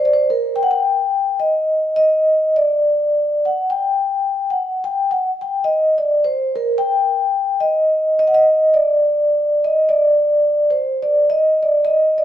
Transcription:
0.05 0.13 D5 medium
0.13 0.29 C5 loud
0.30 0.56 A#4 medium
0.56 0.63 G5 loud
0.63 0.70 F#5 medium
0.71 1.38 G5 loud
1.40 1.95 D#5 medium
1.96 2.55 D#5 loud
2.56 3.47 D5 medium
3.45 3.71 F#5 medium
3.70 4.52 G5 medium
4.50 4.82 F#5 medium
4.84 5.09 G5 medium
5.11 5.24 F#5 medium
5.41 5.65 G5 medium
5.64 5.94 D#5 medium
5.98 6.25 D5 medium
6.24 6.57 C5 medium
6.56 6.80 A#4 medium
6.78 7.62 G5 loud
7.60 8.18 D#5 medium
8.19 8.28 D#5 loud
8.27 8.35 F#5 medium
8.34 8.78 D#5 loud
8.74 9.68 D5 loud
9.64 9.93 D#5 medium
9.89 10.74 D5 loud
10.70 11.05 C5 medium
11.03 11.28 D5 medium
11.30 11.63 D#5 medium
11.63 11.90 D5 medium
11.85 12.20 D#5 medium
12.18 12.24 D5 medium

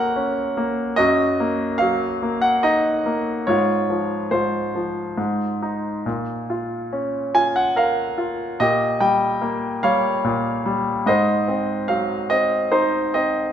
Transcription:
0.00 0.94 F#2 soft
0.00 0.94 F#3 soft
0.00 0.57 A#3 soft
0.00 0.98 F#4 medium
0.00 1.00 A#4 medium
0.00 0.99 C5 medium
0.00 1.00 F#5 medium
0.16 0.95 C#4 soft
0.57 0.97 A#3 soft
0.96 3.44 F#2 medium
0.96 2.18 F#4 medium
0.96 1.82 D#5 medium
1.40 2.21 A#3 soft
1.78 3.44 F#3 soft
1.78 2.37 F5 medium
2.22 3.04 A#3 soft
2.42 2.64 F#5 medium
2.63 3.45 D#4 soft
2.63 3.50 D#5 medium
3.06 3.46 A#3 soft
3.47 4.30 G#2 medium
3.47 4.32 F4 soft
3.47 4.34 C#5 medium
3.90 4.74 F3 soft
4.31 5.16 G#2 soft
4.31 5.60 F4 soft
4.31 5.59 C5 medium
4.75 5.18 F3 soft
5.17 6.04 G#2 soft
5.62 6.05 D#4 soft
6.06 8.55 A#2 soft
6.50 7.33 F4 soft
6.93 8.55 C#4 soft
7.34 8.16 F4 soft
7.34 7.54 G#5 medium
7.56 7.77 F#5 medium
7.76 8.57 A#4 soft
7.76 8.62 F5 medium
8.18 8.58 F4 soft
8.60 10.23 A#2 soft
8.60 9.80 G4 medium
8.60 9.02 D#5 medium
9.00 9.82 G3 soft
9.00 9.85 G5 medium
9.41 11.03 A#3 soft
9.83 10.64 G3 soft
9.83 11.04 C#5 medium
9.83 11.03 F5 medium
10.24 11.05 A#2 soft
10.66 11.06 G3 soft
11.06 13.52 G#2 medium
11.06 12.27 C5 medium
11.06 11.85 D#5 medium
11.48 12.29 C4 soft
11.88 13.52 F#3 soft
11.88 12.31 F5 medium
12.30 13.13 C4 soft
12.30 12.73 D#5 medium
12.72 13.52 D#4 soft
12.72 13.11 C5 medium
13.14 13.52 C4 soft
13.14 13.52 D#5 medium

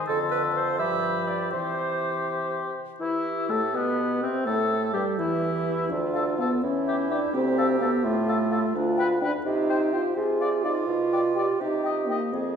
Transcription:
0.07 0.81 F2 soft
0.07 0.82 D3 medium
0.07 0.81 A4 soft
0.07 0.19 A4 medium
0.07 0.82 C6 soft
0.31 0.42 B4 medium
0.55 0.78 C5 medium
0.79 1.53 G2 soft
0.79 1.54 F3 soft
0.79 1.50 G4 soft
0.79 1.30 E5 medium
0.79 1.51 B5 medium
1.28 1.52 D5 medium
1.51 2.74 C3 soft
1.51 2.76 E3 soft
1.51 2.73 G4 soft
1.51 2.73 C5 medium
1.51 2.73 C6 soft
3.00 3.52 E3 soft
3.00 3.46 E4 medium
3.00 3.52 E4 medium
3.00 4.42 G4 medium
3.49 3.76 A2 soft
3.49 3.60 A3 medium
3.49 3.76 A4 soft
3.49 3.77 A4 medium
3.73 4.25 B2 soft
3.73 4.24 B3 medium
3.73 4.22 B3 soft
3.73 4.22 B4 soft
4.22 4.46 C3 medium
4.22 4.47 C4 medium
4.22 4.28 C4 soft
4.22 4.46 C4 soft
4.46 4.94 A2 soft
4.46 4.95 A3 medium
4.46 4.96 A4 medium
4.46 4.93 A4 medium
4.46 5.20 A4 medium
4.93 5.06 G2 soft
4.93 5.20 G3 medium
4.93 5.05 G4 soft
4.93 5.18 G4 soft
5.18 5.89 E2 medium
5.18 5.92 E3 medium
5.18 5.89 E4 medium
5.18 5.91 G4 soft
5.90 6.51 D2 soft
5.90 6.38 D4 medium
5.90 6.61 F4 medium
6.13 6.24 A4 soft
6.13 6.19 F5 medium
6.38 6.65 B3 medium
6.38 6.49 A4 soft
6.38 6.44 F5 soft
6.63 7.22 E2 medium
6.63 7.12 C#4 medium
6.63 7.35 E4 medium
6.87 6.96 G4 soft
6.87 6.93 E5 soft
7.10 7.33 D4 medium
7.10 7.19 G4 soft
7.10 7.16 E5 soft
7.34 7.93 D2 medium
7.34 7.80 C4 medium
7.34 8.05 G4 medium
7.58 7.67 A4 medium
7.58 7.64 F5 medium
7.80 8.06 B3 medium
7.80 7.90 A4 soft
7.80 7.86 F5 medium
8.04 8.63 A2 medium
8.04 8.75 A3 medium
8.04 8.77 F4 medium
8.28 8.37 A4 soft
8.28 8.34 F5 medium
8.51 8.59 A4 soft
8.51 8.57 F5 soft
8.75 9.34 D2 medium
8.75 9.21 D4 medium
8.75 9.21 F4 medium
8.97 9.08 B4 medium
8.97 9.03 G5 medium
9.21 9.32 D4 medium
9.21 9.32 B4 medium
9.21 9.27 G5 soft
9.45 10.05 C3 medium
9.45 9.95 D#4 medium
9.45 10.13 G4 medium
9.70 9.78 C5 soft
9.70 9.76 G5 medium
9.93 10.18 F4 medium
9.93 10.02 C5 soft
9.93 9.99 G5 soft
10.16 10.76 C3 medium
10.16 11.62 F4 medium
10.16 10.65 G#4 medium
10.41 10.49 D5 soft
10.41 10.47 F5 medium
10.64 10.88 D#4 medium
10.64 10.73 D5 soft
10.64 10.70 F5 soft
10.87 11.48 B2 soft
10.87 11.35 F4 medium
11.13 11.21 D5 soft
11.13 11.19 G5 soft
11.35 11.59 G4 medium
11.35 11.46 D5 soft
11.35 11.42 G5 soft
11.60 12.21 C3 medium
11.60 12.09 D#4 medium
11.60 12.35 G4 medium
11.84 11.94 D#5 soft
11.84 11.90 G5 soft
12.08 12.34 A#3 medium
12.08 12.19 D#5 soft
12.08 12.15 G5 soft
12.33 12.56 F2 soft
12.33 12.56 C4 medium
12.33 12.56 G#4 medium

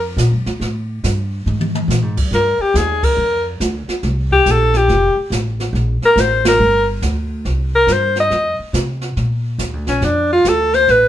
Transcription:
0.00 0.16 F2 medium
0.17 0.33 A#2 medium
0.17 snare medium
0.17 hi-hat pedal medium
0.32 0.46 F#2 medium
0.46 0.59 D#2 medium
0.46 snare soft
0.60 1.02 A2 medium
0.60 brush sweep soft
0.60 snare soft
1.04 1.45 G2 medium
1.04 snare medium
1.04 hi-hat pedal medium
1.46 1.87 G#2 medium
1.46 mid tom soft
1.61 mid tom medium
1.75 mid tom medium
1.88 2.02 A#2 medium
1.88 snare medium
1.88 hi-hat pedal medium
2.02 2.16 G#2 medium
2.16 2.30 F#2 medium
2.16 kick medium
2.16 crash medium
2.31 2.57 G2 medium
2.31 2.63 A#4 medium
2.31 brush sweep soft
2.31 snare soft
2.59 2.78 G4 medium
2.59 muted upright bass stroke soft
2.74 3.16 D#2 medium
2.74 3.05 G#4 medium
2.74 snare medium
2.74 hi-hat pedal medium
3.03 3.46 A#4 medium
3.03 kick medium
3.03 crash medium
3.17 3.59 F2 medium
3.17 brush sweep soft
3.60 3.86 D2 medium
3.60 snare medium
3.60 hi-hat pedal medium
3.88 muted upright bass stroke soft
3.88 snare soft
4.03 4.45 C2 medium
4.03 brush sweep medium
4.03 snare soft
4.31 4.53 G4 medium
4.31 kick medium
4.46 4.87 A#1 medium
4.46 snare medium
4.46 hi-hat pedal medium
4.51 4.79 A4 medium
4.74 5.18 G4 medium
4.74 snare soft
4.88 5.14 F1 medium
4.88 brush sweep soft
4.88 snare soft
5.16 muted upright bass stroke soft
5.30 5.72 A1 medium
5.30 snare medium
5.30 hi-hat pedal medium
5.60 snare soft
5.73 5.99 A#1 medium
5.73 brush sweep soft
5.73 snare soft
6.02 6.22 A#4 loud
6.02 muted upright bass stroke soft
6.02 snare soft
6.16 6.58 A1 medium
6.16 snare medium
6.16 hi-hat pedal medium
6.21 6.47 C5 medium
6.45 6.86 A#4 medium
6.45 snare medium
6.45 ride medium
6.59 7.01 G1 medium
6.59 brush sweep soft
7.02 7.44 D2 medium
7.02 snare medium
7.02 hi-hat pedal medium
7.45 7.86 C2 medium
7.45 brush sweep soft
7.45 snare soft
7.75 7.94 A#4 medium
7.87 8.29 G2 medium
7.87 snare medium
7.87 hi-hat pedal medium
7.93 8.18 C5 medium
8.16 snare soft
8.20 8.58 D#5 loud
8.30 8.57 F2 medium
8.30 brush sweep medium
8.30 snare soft
8.59 muted upright bass stroke soft
8.73 9.15 C3 medium
8.73 snare medium
8.73 hi-hat pedal medium
9.01 snare soft
9.16 9.58 A#2 medium
9.16 brush sweep soft
9.16 snare soft
9.58 9.73 D#2 medium
9.58 snare medium
9.58 hi-hat pedal medium
9.73 9.87 D2 medium
9.87 10.01 A#1 medium
9.87 10.07 C#4 medium
9.87 snare soft
10.01 10.43 F2 medium
10.01 10.31 D4 medium
10.01 brush sweep soft
10.01 snare soft
10.33 10.50 F4 medium
10.45 10.86 D2 medium
10.45 snare medium
10.45 hi-hat pedal medium
10.49 10.76 A4 medium
10.73 10.92 C5 loud
10.73 snare soft
10.88 11.08 A1 medium
10.88 11.08 B4 medium
10.88 brush sweep soft
10.88 snare soft

